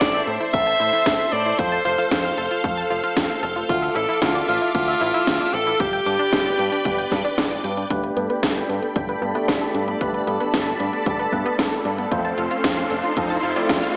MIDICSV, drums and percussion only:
0, 0, Header, 1, 2, 480
1, 0, Start_track
1, 0, Tempo, 526316
1, 1448, Time_signature, 4, 2, 24, 8
1, 12737, End_track
2, 0, Start_track
2, 0, Title_t, "Drums"
2, 9, Note_on_c, 9, 38, 120
2, 9, Note_on_c, 9, 42, 85
2, 10, Note_on_c, 9, 36, 110
2, 100, Note_off_c, 9, 38, 0
2, 100, Note_off_c, 9, 42, 0
2, 101, Note_off_c, 9, 36, 0
2, 129, Note_on_c, 9, 42, 38
2, 221, Note_off_c, 9, 42, 0
2, 249, Note_on_c, 9, 42, 62
2, 341, Note_off_c, 9, 42, 0
2, 369, Note_on_c, 9, 42, 35
2, 461, Note_off_c, 9, 42, 0
2, 489, Note_on_c, 9, 36, 119
2, 489, Note_on_c, 9, 42, 82
2, 580, Note_off_c, 9, 36, 0
2, 580, Note_off_c, 9, 42, 0
2, 609, Note_on_c, 9, 42, 39
2, 700, Note_off_c, 9, 42, 0
2, 849, Note_on_c, 9, 42, 36
2, 940, Note_off_c, 9, 42, 0
2, 968, Note_on_c, 9, 38, 119
2, 968, Note_on_c, 9, 42, 85
2, 969, Note_on_c, 9, 36, 123
2, 1059, Note_off_c, 9, 38, 0
2, 1059, Note_off_c, 9, 42, 0
2, 1060, Note_off_c, 9, 36, 0
2, 1089, Note_on_c, 9, 42, 37
2, 1180, Note_off_c, 9, 42, 0
2, 1209, Note_on_c, 9, 42, 62
2, 1300, Note_off_c, 9, 42, 0
2, 1329, Note_on_c, 9, 42, 38
2, 1420, Note_off_c, 9, 42, 0
2, 1448, Note_on_c, 9, 42, 89
2, 1449, Note_on_c, 9, 36, 111
2, 1539, Note_off_c, 9, 42, 0
2, 1540, Note_off_c, 9, 36, 0
2, 1568, Note_on_c, 9, 42, 37
2, 1659, Note_off_c, 9, 42, 0
2, 1688, Note_on_c, 9, 42, 63
2, 1780, Note_off_c, 9, 42, 0
2, 1808, Note_on_c, 9, 42, 38
2, 1900, Note_off_c, 9, 42, 0
2, 1928, Note_on_c, 9, 38, 114
2, 1928, Note_on_c, 9, 42, 92
2, 1929, Note_on_c, 9, 36, 115
2, 2019, Note_off_c, 9, 38, 0
2, 2019, Note_off_c, 9, 42, 0
2, 2020, Note_off_c, 9, 36, 0
2, 2048, Note_on_c, 9, 42, 40
2, 2139, Note_off_c, 9, 42, 0
2, 2168, Note_on_c, 9, 42, 66
2, 2259, Note_off_c, 9, 42, 0
2, 2288, Note_on_c, 9, 42, 36
2, 2379, Note_off_c, 9, 42, 0
2, 2407, Note_on_c, 9, 42, 84
2, 2408, Note_on_c, 9, 36, 110
2, 2499, Note_off_c, 9, 36, 0
2, 2499, Note_off_c, 9, 42, 0
2, 2528, Note_on_c, 9, 42, 39
2, 2619, Note_off_c, 9, 42, 0
2, 2767, Note_on_c, 9, 42, 40
2, 2859, Note_off_c, 9, 42, 0
2, 2887, Note_on_c, 9, 38, 116
2, 2887, Note_on_c, 9, 42, 95
2, 2888, Note_on_c, 9, 36, 108
2, 2978, Note_off_c, 9, 38, 0
2, 2978, Note_off_c, 9, 42, 0
2, 2979, Note_off_c, 9, 36, 0
2, 3008, Note_on_c, 9, 42, 37
2, 3099, Note_off_c, 9, 42, 0
2, 3128, Note_on_c, 9, 42, 64
2, 3219, Note_off_c, 9, 42, 0
2, 3247, Note_on_c, 9, 42, 39
2, 3338, Note_off_c, 9, 42, 0
2, 3367, Note_on_c, 9, 42, 94
2, 3368, Note_on_c, 9, 36, 114
2, 3458, Note_off_c, 9, 42, 0
2, 3459, Note_off_c, 9, 36, 0
2, 3487, Note_on_c, 9, 42, 39
2, 3578, Note_off_c, 9, 42, 0
2, 3607, Note_on_c, 9, 42, 66
2, 3698, Note_off_c, 9, 42, 0
2, 3727, Note_on_c, 9, 42, 40
2, 3818, Note_off_c, 9, 42, 0
2, 3847, Note_on_c, 9, 38, 112
2, 3847, Note_on_c, 9, 42, 96
2, 3848, Note_on_c, 9, 36, 111
2, 3938, Note_off_c, 9, 38, 0
2, 3938, Note_off_c, 9, 42, 0
2, 3940, Note_off_c, 9, 36, 0
2, 3968, Note_on_c, 9, 42, 42
2, 4059, Note_off_c, 9, 42, 0
2, 4088, Note_on_c, 9, 42, 70
2, 4179, Note_off_c, 9, 42, 0
2, 4209, Note_on_c, 9, 42, 40
2, 4300, Note_off_c, 9, 42, 0
2, 4329, Note_on_c, 9, 36, 104
2, 4329, Note_on_c, 9, 42, 89
2, 4420, Note_off_c, 9, 36, 0
2, 4420, Note_off_c, 9, 42, 0
2, 4448, Note_on_c, 9, 42, 40
2, 4539, Note_off_c, 9, 42, 0
2, 4689, Note_on_c, 9, 42, 41
2, 4780, Note_off_c, 9, 42, 0
2, 4809, Note_on_c, 9, 36, 113
2, 4809, Note_on_c, 9, 38, 116
2, 4809, Note_on_c, 9, 42, 94
2, 4900, Note_off_c, 9, 36, 0
2, 4900, Note_off_c, 9, 38, 0
2, 4900, Note_off_c, 9, 42, 0
2, 4929, Note_on_c, 9, 42, 40
2, 5020, Note_off_c, 9, 42, 0
2, 5049, Note_on_c, 9, 42, 63
2, 5140, Note_off_c, 9, 42, 0
2, 5169, Note_on_c, 9, 42, 41
2, 5260, Note_off_c, 9, 42, 0
2, 5289, Note_on_c, 9, 42, 97
2, 5290, Note_on_c, 9, 36, 113
2, 5380, Note_off_c, 9, 42, 0
2, 5381, Note_off_c, 9, 36, 0
2, 5410, Note_on_c, 9, 42, 40
2, 5501, Note_off_c, 9, 42, 0
2, 5529, Note_on_c, 9, 42, 69
2, 5620, Note_off_c, 9, 42, 0
2, 5650, Note_on_c, 9, 42, 40
2, 5741, Note_off_c, 9, 42, 0
2, 5769, Note_on_c, 9, 36, 114
2, 5769, Note_on_c, 9, 38, 110
2, 5769, Note_on_c, 9, 42, 97
2, 5860, Note_off_c, 9, 38, 0
2, 5860, Note_off_c, 9, 42, 0
2, 5861, Note_off_c, 9, 36, 0
2, 5889, Note_on_c, 9, 42, 41
2, 5980, Note_off_c, 9, 42, 0
2, 6010, Note_on_c, 9, 42, 72
2, 6101, Note_off_c, 9, 42, 0
2, 6130, Note_on_c, 9, 42, 42
2, 6222, Note_off_c, 9, 42, 0
2, 6249, Note_on_c, 9, 42, 96
2, 6250, Note_on_c, 9, 36, 108
2, 6340, Note_off_c, 9, 42, 0
2, 6341, Note_off_c, 9, 36, 0
2, 6370, Note_on_c, 9, 42, 39
2, 6461, Note_off_c, 9, 42, 0
2, 6490, Note_on_c, 9, 36, 60
2, 6490, Note_on_c, 9, 38, 59
2, 6490, Note_on_c, 9, 42, 39
2, 6581, Note_off_c, 9, 36, 0
2, 6582, Note_off_c, 9, 38, 0
2, 6582, Note_off_c, 9, 42, 0
2, 6610, Note_on_c, 9, 42, 39
2, 6702, Note_off_c, 9, 42, 0
2, 6729, Note_on_c, 9, 36, 114
2, 6730, Note_on_c, 9, 38, 117
2, 6730, Note_on_c, 9, 42, 97
2, 6821, Note_off_c, 9, 36, 0
2, 6821, Note_off_c, 9, 38, 0
2, 6821, Note_off_c, 9, 42, 0
2, 6851, Note_on_c, 9, 42, 42
2, 6943, Note_off_c, 9, 42, 0
2, 6970, Note_on_c, 9, 42, 68
2, 7062, Note_off_c, 9, 42, 0
2, 7089, Note_on_c, 9, 42, 43
2, 7181, Note_off_c, 9, 42, 0
2, 7208, Note_on_c, 9, 42, 93
2, 7209, Note_on_c, 9, 36, 118
2, 7299, Note_off_c, 9, 42, 0
2, 7300, Note_off_c, 9, 36, 0
2, 7328, Note_on_c, 9, 42, 39
2, 7420, Note_off_c, 9, 42, 0
2, 7448, Note_on_c, 9, 42, 68
2, 7539, Note_off_c, 9, 42, 0
2, 7569, Note_on_c, 9, 42, 39
2, 7660, Note_off_c, 9, 42, 0
2, 7688, Note_on_c, 9, 38, 123
2, 7688, Note_on_c, 9, 42, 98
2, 7689, Note_on_c, 9, 36, 113
2, 7779, Note_off_c, 9, 38, 0
2, 7779, Note_off_c, 9, 42, 0
2, 7780, Note_off_c, 9, 36, 0
2, 7809, Note_on_c, 9, 42, 42
2, 7900, Note_off_c, 9, 42, 0
2, 7929, Note_on_c, 9, 42, 67
2, 8021, Note_off_c, 9, 42, 0
2, 8049, Note_on_c, 9, 42, 39
2, 8140, Note_off_c, 9, 42, 0
2, 8169, Note_on_c, 9, 36, 114
2, 8169, Note_on_c, 9, 42, 86
2, 8260, Note_off_c, 9, 42, 0
2, 8261, Note_off_c, 9, 36, 0
2, 8289, Note_on_c, 9, 42, 40
2, 8380, Note_off_c, 9, 42, 0
2, 8529, Note_on_c, 9, 42, 39
2, 8620, Note_off_c, 9, 42, 0
2, 8648, Note_on_c, 9, 38, 117
2, 8648, Note_on_c, 9, 42, 94
2, 8649, Note_on_c, 9, 36, 122
2, 8739, Note_off_c, 9, 38, 0
2, 8739, Note_off_c, 9, 42, 0
2, 8740, Note_off_c, 9, 36, 0
2, 8769, Note_on_c, 9, 42, 39
2, 8860, Note_off_c, 9, 42, 0
2, 8888, Note_on_c, 9, 42, 63
2, 8979, Note_off_c, 9, 42, 0
2, 9009, Note_on_c, 9, 42, 42
2, 9100, Note_off_c, 9, 42, 0
2, 9128, Note_on_c, 9, 42, 90
2, 9129, Note_on_c, 9, 36, 114
2, 9219, Note_off_c, 9, 42, 0
2, 9220, Note_off_c, 9, 36, 0
2, 9249, Note_on_c, 9, 42, 37
2, 9340, Note_off_c, 9, 42, 0
2, 9370, Note_on_c, 9, 42, 63
2, 9461, Note_off_c, 9, 42, 0
2, 9489, Note_on_c, 9, 42, 41
2, 9580, Note_off_c, 9, 42, 0
2, 9609, Note_on_c, 9, 36, 120
2, 9609, Note_on_c, 9, 38, 120
2, 9609, Note_on_c, 9, 42, 90
2, 9700, Note_off_c, 9, 36, 0
2, 9701, Note_off_c, 9, 38, 0
2, 9701, Note_off_c, 9, 42, 0
2, 9730, Note_on_c, 9, 42, 42
2, 9821, Note_off_c, 9, 42, 0
2, 9850, Note_on_c, 9, 42, 69
2, 9941, Note_off_c, 9, 42, 0
2, 9970, Note_on_c, 9, 42, 40
2, 10061, Note_off_c, 9, 42, 0
2, 10089, Note_on_c, 9, 36, 120
2, 10090, Note_on_c, 9, 42, 86
2, 10180, Note_off_c, 9, 36, 0
2, 10181, Note_off_c, 9, 42, 0
2, 10210, Note_on_c, 9, 42, 42
2, 10301, Note_off_c, 9, 42, 0
2, 10329, Note_on_c, 9, 36, 59
2, 10420, Note_off_c, 9, 36, 0
2, 10450, Note_on_c, 9, 42, 38
2, 10541, Note_off_c, 9, 42, 0
2, 10569, Note_on_c, 9, 36, 120
2, 10569, Note_on_c, 9, 38, 122
2, 10569, Note_on_c, 9, 42, 92
2, 10660, Note_off_c, 9, 36, 0
2, 10660, Note_off_c, 9, 38, 0
2, 10660, Note_off_c, 9, 42, 0
2, 10689, Note_on_c, 9, 42, 40
2, 10780, Note_off_c, 9, 42, 0
2, 10809, Note_on_c, 9, 42, 66
2, 10900, Note_off_c, 9, 42, 0
2, 10929, Note_on_c, 9, 42, 39
2, 11021, Note_off_c, 9, 42, 0
2, 11048, Note_on_c, 9, 42, 94
2, 11049, Note_on_c, 9, 36, 121
2, 11140, Note_off_c, 9, 36, 0
2, 11140, Note_off_c, 9, 42, 0
2, 11168, Note_on_c, 9, 42, 38
2, 11259, Note_off_c, 9, 42, 0
2, 11288, Note_on_c, 9, 42, 61
2, 11380, Note_off_c, 9, 42, 0
2, 11409, Note_on_c, 9, 42, 39
2, 11500, Note_off_c, 9, 42, 0
2, 11528, Note_on_c, 9, 38, 127
2, 11528, Note_on_c, 9, 42, 92
2, 11529, Note_on_c, 9, 36, 122
2, 11619, Note_off_c, 9, 38, 0
2, 11619, Note_off_c, 9, 42, 0
2, 11620, Note_off_c, 9, 36, 0
2, 11649, Note_on_c, 9, 42, 40
2, 11740, Note_off_c, 9, 42, 0
2, 11768, Note_on_c, 9, 42, 64
2, 11859, Note_off_c, 9, 42, 0
2, 11888, Note_on_c, 9, 42, 37
2, 11979, Note_off_c, 9, 42, 0
2, 12008, Note_on_c, 9, 42, 90
2, 12009, Note_on_c, 9, 36, 117
2, 12099, Note_off_c, 9, 42, 0
2, 12100, Note_off_c, 9, 36, 0
2, 12129, Note_on_c, 9, 42, 38
2, 12220, Note_off_c, 9, 42, 0
2, 12369, Note_on_c, 9, 42, 36
2, 12460, Note_off_c, 9, 42, 0
2, 12489, Note_on_c, 9, 36, 122
2, 12489, Note_on_c, 9, 38, 127
2, 12489, Note_on_c, 9, 42, 89
2, 12580, Note_off_c, 9, 36, 0
2, 12580, Note_off_c, 9, 38, 0
2, 12580, Note_off_c, 9, 42, 0
2, 12609, Note_on_c, 9, 42, 39
2, 12701, Note_off_c, 9, 42, 0
2, 12737, End_track
0, 0, End_of_file